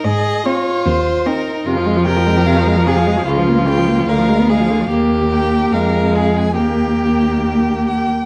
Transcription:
<<
  \new Staff \with { instrumentName = "Violin" } { \time 4/4 \key aes \mixolydian \tempo 4 = 148 ees''4 des''4 c''4 bes'4 | \key ees \mixolydian r4 g''4 f''4 f''4 | r4 g''4 f''4 f''4 | r4 g''4 f''4. aes''8 |
g''2. g''4 | }
  \new Staff \with { instrumentName = "Violin" } { \time 4/4 \key aes \mixolydian aes'4 f'2 ees'4 | \key ees \mixolydian f'4 bes'2 aes'4 | f'2 bes'4 aes'4 | g'2 bes'4 aes'4 |
g'2.~ g'8 r8 | }
  \new Staff \with { instrumentName = "Viola" } { \clef bass \time 4/4 \key aes \mixolydian r4 c'8. r4 r16 c'8. r16 | \key ees \mixolydian c16 f16 aes16 f16 c16 f16 aes16 f16 c16 f16 aes16 f16 c16 f16 aes16 f16 | des16 f16 bes16 f16 des16 f16 bes16 f16 d16 f16 aes16 b16 aes16 f16 d16 f16 | bes4 bes4 aes2 |
bes2.~ bes8 r8 | }
  \new Staff \with { instrumentName = "Cello" } { \clef bass \time 4/4 \key aes \mixolydian aes,4 r4 ees,4 r4 | \key ees \mixolydian f,1 | des,2 d,2 | ees,2 f,2 |
ees,2.~ ees,8 r8 | }
>>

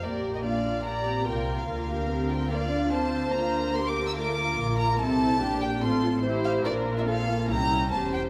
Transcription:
<<
  \new Staff \with { instrumentName = "Violin section" } { \time 4/4 \key bes \major \tempo 4 = 145 d''8. ees''16 f''4 bes''4 g''8. f''16~ | f''4. g''8 f''4 a''4 | \key bes \lydian bes''4 c'''16 d'''8 e'''16 d'''4. bes''8 | a''4. g''8 c'''4 r8 f''8 |
d''8. e''16 f''4 bes''4 a''8 g''8 | }
  \new Staff \with { instrumentName = "Violin section" } { \time 4/4 \key bes \major bes'4 d''4 d''4 bes'4 | bes'2 d''4 c''4~ | \key bes \lydian c''4 bes'2. | a'4 g'4 a'4 c''4 |
bes'4 a'4 g'4 c''4 | }
  \new Staff \with { instrumentName = "Viola section" } { \time 4/4 \key bes \major << { g'4 f'8 f'8 g'4 f'4 | f'8 g'8 g'8 f'2~ f'8 | \key bes \lydian f'4 g'4 f'2 | e'8 e'8 g'8 g'8 f'8 f'8 g'4 |
f'2 e'8 e'8 g'4 | } \\ { bes4 d'4 d'8 c'8 bes4 | bes4 c'4 bes8 d'8 c'4 | bes2 a8 bes4. | c'4 d'4 c'4 e'4 |
d'4 c'8 bes8 des'2 | } >> }
  \new Staff \with { instrumentName = "Cello section" } { \clef bass \time 4/4 \key bes \major bes,2. c4 | d1 | \key bes \lydian d2. bes,4 | c4 bes,4 a,2 |
bes,2 c,4 e,4 | }
  \new Staff \with { instrumentName = "Double bass section" } { \clef bass \time 4/4 \key bes \major bes,,2. c,4 | d,1 | \key bes \lydian d,2. bes,,4 | c,4 bes,,4 a,,2 |
bes,,2 c,4 e,,4 | }
>>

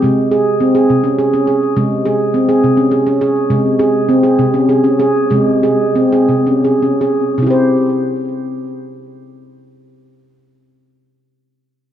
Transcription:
<<
  \new Staff \with { instrumentName = "Handpan" } { \time 6/8 \tempo 4. = 64 aes8 aes'8 c'16 aes'8 des'16 aes'16 des'16 aes'8 | aes8 aes'8 c'16 aes'8 des'16 aes'16 des'16 aes'8 | aes8 aes'8 c'16 aes'8 des'16 aes'16 des'16 aes'8 | aes8 aes'8 c'16 aes'8 des'16 aes'16 des'16 aes'8 |
r2. | r2. | }
  \new Staff \with { instrumentName = "Handpan" } { \clef bass \time 6/8 c4. c8 r4 | c4. c8 r4 | c4. c8 r4 | c4. c8 r4 |
<c c' e' g' c''>2.~ | <c c' e' g' c''>2. | }
>>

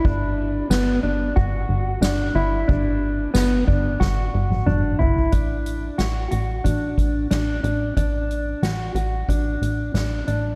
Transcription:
<<
  \new Staff \with { instrumentName = "Clean electric guitar" } { \time 4/4 \key d \mixolydian \tempo 4 = 91 d'4 b8 d'8 fis'4 d'8 e'8 | d'4 b8 d'8 fis'4 d'8 e'8 | d'4 fis'8 fis'8 d'4 d'8 d'8 | d'4 fis'8 fis'8 d'4 d'8 d'8 | }
  \new Staff \with { instrumentName = "Analog synth bass" } { \clef bass \time 4/4 \key d \mixolydian g,,4 g,,8 g,,8 g,,8 g,,8 g,,8 g,,8 | g,,4 g,,8 g,,8 g,,8 g,,8 g,,8 g,,8 | a,,4 a,,8 a,,8 a,,8 a,,8 a,,8 a,,8 | a,,4 a,,8 a,,8 a,,8 a,,8 a,,8 a,,8 | }
  \new DrumStaff \with { instrumentName = "Drums" } \drummode { \time 4/4 <bd cymr>4 <cymr sn tamb>4 <bd cymr>4 <cymr sn tamb>4 | <bd cymr>4 <cymr sn tamb>8 bd8 <bd sn>8. tommh16 toml8 tomfh16 tomfh16 | <hh bd>8 hh8 <hh sn>8 hh8 <hh bd>8 <hh bd>8 <hh sn>8 hh8 | <hh bd>8 hh8 <hh sn>8 hh8 <hh bd>8 hh8 <hh sn>8 hh8 | }
>>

